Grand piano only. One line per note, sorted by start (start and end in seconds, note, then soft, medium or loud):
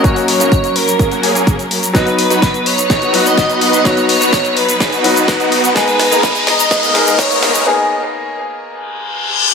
0.00 0.03 F#3 medium
0.00 1.20 F#3 loud
0.00 0.04 A#3 medium
0.00 1.20 A#3 medium
0.00 0.05 C#4 medium
0.00 0.05 F#4 loud
0.05 1.21 C#4 medium
0.05 1.21 F#4 loud
1.93 3.10 F#3 loud
1.93 3.11 B3 medium
1.93 3.11 D#4 medium
1.93 3.11 F#4 loud
3.13 3.82 F#3 medium
3.13 3.82 B3 medium
3.13 3.83 D#4 medium
3.13 3.83 F#4 medium
3.84 5.01 F#3 medium
3.84 5.01 B3 medium
3.84 5.02 D#4 medium
3.84 5.02 F#4 loud
5.03 5.72 F#3 medium
5.03 5.73 B3 medium
5.03 5.73 D#4 medium
5.03 5.73 F#4 medium
5.75 6.91 G#3 loud
5.75 6.92 B3 medium
5.75 6.92 D#4 medium
5.75 6.93 G#4 loud
6.94 7.64 D#4 medium
6.94 7.64 G#4 medium
6.94 7.63 A#4 medium
7.65 8.82 A#3 loud
7.65 8.82 B3 medium
7.65 8.83 D#4 medium
7.65 8.83 G#4 loud